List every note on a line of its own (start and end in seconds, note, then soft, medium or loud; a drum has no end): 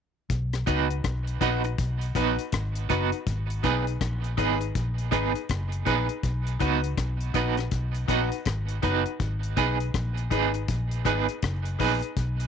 0.30 0.64 B1 loud
0.30 kick loud
0.30 closed hi-hat medium
0.53 cross-stick medium
0.53 closed hi-hat medium
0.66 1.01 C#2 medium
0.66 0.87 B3 medium
0.66 0.91 D#4 medium
0.66 0.87 D#4 medium
0.66 0.91 F#4 medium
0.66 0.87 F#4 medium
0.66 0.91 B4 medium
0.66 0.87 B4 medium
0.66 kick medium
0.66 closed hi-hat medium
0.90 closed hi-hat soft
1.04 1.38 B1 medium
1.04 kick loud
1.04 cross-stick loud
1.04 closed hi-hat medium
1.27 closed hi-hat soft
1.41 1.75 A#1 medium
1.41 1.61 B3 medium
1.41 1.65 D#4 medium
1.41 1.61 D#4 medium
1.41 1.65 F#4 medium
1.41 1.61 F#4 loud
1.41 1.65 B4 loud
1.41 1.61 B4 medium
1.41 kick medium
1.41 closed hi-hat medium
1.64 muted clean electric guitar stroke soft
1.64 closed hi-hat soft
1.78 2.12 B1 medium
1.78 kick loud
1.78 closed hi-hat medium
2.01 closed hi-hat soft
2.15 2.36 A#1 medium
2.15 2.35 B3 medium
2.15 2.39 D#4 medium
2.15 2.36 D#4 medium
2.15 2.39 F#4 medium
2.15 2.36 F#4 medium
2.15 2.40 B4 medium
2.15 2.36 B4 medium
2.15 kick medium
2.15 closed hi-hat medium
2.39 closed hi-hat medium
2.52 2.86 G#1 medium
2.52 kick loud
2.52 cross-stick loud
2.52 closed hi-hat medium
2.75 closed hi-hat medium
2.89 3.11 F#1 medium
2.89 3.09 B3 medium
2.89 3.13 D#4 medium
2.89 3.10 D#4 medium
2.89 3.14 F#4 medium
2.89 3.10 F#4 medium
2.89 3.14 B4 medium
2.89 3.10 B4 medium
2.89 kick medium
2.89 closed hi-hat medium
3.12 closed hi-hat medium
3.27 3.60 G#1 loud
3.27 kick loud
3.27 closed hi-hat medium
3.50 closed hi-hat medium
3.63 3.97 B1 medium
3.63 3.83 B3 medium
3.63 3.87 D#4 medium
3.63 3.84 D#4 medium
3.63 3.88 G#4 medium
3.63 3.84 G#4 medium
3.63 3.88 B4 medium
3.63 3.84 B4 loud
3.63 kick medium
3.63 closed hi-hat medium
3.87 closed hi-hat soft
4.01 4.34 A#1 medium
4.01 kick loud
4.01 cross-stick medium
4.01 closed hi-hat medium
4.24 closed hi-hat medium
4.37 4.71 G#1 medium
4.37 4.57 B3 medium
4.37 4.61 D#4 medium
4.37 4.58 D#4 medium
4.37 4.62 G#4 medium
4.37 4.58 G#4 medium
4.37 4.62 B4 loud
4.37 4.58 B4 medium
4.37 kick medium
4.37 closed hi-hat medium
4.61 muted clean electric guitar stroke soft
4.61 closed hi-hat soft
4.75 5.09 A#1 medium
4.75 kick loud
4.75 closed hi-hat medium
4.98 closed hi-hat soft
5.11 5.33 G#1 medium
5.11 5.31 B3 medium
5.11 5.35 D#4 medium
5.11 5.32 D#4 medium
5.11 5.36 G#4 medium
5.11 5.32 G#4 medium
5.11 5.36 B4 loud
5.11 5.32 B4 medium
5.11 kick medium
5.11 closed hi-hat medium
5.35 closed hi-hat medium
5.49 5.83 F#1 medium
5.49 kick loud
5.49 cross-stick loud
5.49 closed hi-hat medium
5.72 closed hi-hat medium
5.85 6.07 A#1 medium
5.85 6.06 B3 medium
5.85 6.10 D#4 medium
5.85 6.06 D#4 medium
5.85 6.10 G#4 medium
5.85 6.06 G#4 medium
5.85 6.10 B4 loud
5.85 6.06 B4 medium
5.85 kick medium
5.85 closed hi-hat medium
6.09 closed hi-hat soft
6.23 6.57 B1 loud
6.23 kick loud
6.23 closed hi-hat medium
6.47 closed hi-hat medium
6.59 6.94 C#2 medium
6.59 6.80 B3 medium
6.59 6.84 D#4 medium
6.59 6.80 D#4 medium
6.59 6.84 F#4 medium
6.59 6.80 F#4 medium
6.59 6.84 B4 medium
6.59 6.81 B4 medium
6.59 kick medium
6.59 closed hi-hat medium
6.84 closed hi-hat soft
6.97 7.31 B1 medium
6.97 kick loud
6.97 cross-stick medium
6.97 closed hi-hat medium
7.21 closed hi-hat soft
7.34 7.68 A#1 medium
7.34 7.54 B3 medium
7.34 7.58 D#4 medium
7.34 7.55 D#4 medium
7.34 7.58 F#4 medium
7.34 7.55 F#4 medium
7.34 7.59 B4 medium
7.34 7.55 B4 medium
7.34 kick medium
7.34 closed hi-hat medium
7.57 muted clean electric guitar stroke soft
7.57 cross-stick medium
7.57 closed hi-hat soft
7.71 8.05 B1 medium
7.71 kick loud
7.71 closed hi-hat medium
7.95 closed hi-hat soft
8.08 8.29 A#1 medium
8.08 8.28 B3 medium
8.08 8.32 D#4 medium
8.08 8.29 D#4 medium
8.08 8.32 F#4 medium
8.08 8.29 F#4 medium
8.08 8.33 B4 loud
8.08 8.29 B4 medium
8.08 kick medium
8.08 closed hi-hat medium
8.32 closed hi-hat medium
8.45 8.79 G#1 medium
8.45 kick loud
8.45 cross-stick loud
8.45 closed hi-hat medium
8.69 closed hi-hat medium
8.82 9.04 F#1 medium
8.82 9.02 B3 medium
8.82 9.06 D#4 medium
8.82 9.03 D#4 medium
8.82 9.07 F#4 medium
8.82 9.03 F#4 medium
8.82 9.07 B4 medium
8.82 9.03 B4 medium
8.82 kick medium
8.82 closed hi-hat medium
9.06 closed hi-hat soft
9.20 9.53 G#1 loud
9.20 kick loud
9.20 closed hi-hat medium
9.43 closed hi-hat medium
9.57 9.91 B1 medium
9.57 9.77 B3 medium
9.57 9.81 D#4 medium
9.57 9.77 D#4 medium
9.57 9.81 G#4 medium
9.57 9.77 G#4 medium
9.57 9.81 B4 medium
9.57 9.77 B4 medium
9.57 kick medium
9.57 closed hi-hat medium
9.80 closed hi-hat soft
9.94 10.28 A#1 medium
9.94 kick loud
9.94 cross-stick medium
9.94 closed hi-hat medium
10.17 closed hi-hat medium
10.30 10.65 G#1 medium
10.30 10.51 B3 medium
10.30 10.55 D#4 medium
10.30 10.51 D#4 medium
10.30 10.55 G#4 medium
10.30 10.51 G#4 medium
10.30 10.55 B4 medium
10.30 10.51 B4 medium
10.30 kick medium
10.30 closed hi-hat medium
10.54 closed hi-hat soft
10.68 11.02 A#1 medium
10.68 kick loud
10.68 closed hi-hat medium
10.91 closed hi-hat soft
11.05 11.26 G#1 medium
11.05 11.25 B3 medium
11.05 11.29 D#4 medium
11.05 11.25 D#4 medium
11.05 11.29 G#4 medium
11.05 11.26 G#4 medium
11.05 11.29 B4 loud
11.05 11.26 B4 medium
11.05 kick medium
11.05 closed hi-hat medium
11.29 closed hi-hat medium
11.42 11.76 F#1 medium
11.42 kick loud
11.42 cross-stick loud
11.42 closed hi-hat medium
11.65 closed hi-hat medium
11.79 12.01 A#1 medium
11.79 11.99 B3 medium
11.79 12.03 D#4 medium
11.79 11.99 D#4 medium
11.79 12.03 G#4 medium
11.79 12.00 G#4 medium
11.79 12.04 B4 medium
11.79 12.00 B4 medium
11.79 kick medium
11.79 open hi-hat medium
12.02 closed hi-hat soft
12.17 12.47 B1 loud
12.17 kick loud
12.17 closed hi-hat medium
12.40 closed hi-hat medium